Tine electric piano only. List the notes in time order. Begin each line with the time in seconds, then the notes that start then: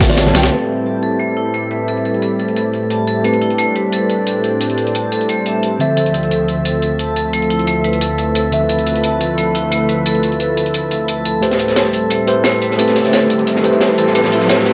Already playing: D3 F3 C4 F4 E5
0.09 D3 C4 F4 D5
0.34 D3 C4 F4 G5
0.51 A3 C4 G4 B4
3.23 A3 C4 G4 B4
5.79 D3 F3 C4 E5
8.52 D3 F3 C4 E5
11.41 A3 G4 B4 C5
12.26 A3 G4 B4 C5
12.78 A3 C4 G4 B4
13.63 A3 G4 B4 C5
14.14 A3 C4 G4 B4